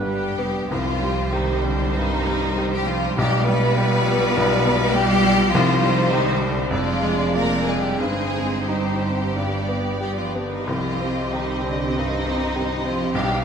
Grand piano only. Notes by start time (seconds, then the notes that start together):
Already playing: D3 G3 B3 G4
0.02 G4
0.38 B3
0.71 C2
1.02 G3
1.33 G4
1.64 G3
1.97 G2
2.27 G3
2.58 G4
2.87 G3
3.18 B1
3.48 G3
3.77 G4
4.08 G3
4.37 B1
4.66 B2
4.96 G4
5.25 G3
5.55 C2
5.83 G3
6.13 G4
6.42 G3
6.71 F2
7.02 G#3
7.34 F4
7.66 G#3
8.00 G2
8.34 C4
8.68 D#4
9.03 C4
9.37 G2
9.68 B3
10.01 G4
10.35 B3
10.67 C2
11.00 C4
11.33 G4
11.64 C4
11.97 G2
12.26 C4
12.56 G4
12.85 C4
13.15 B1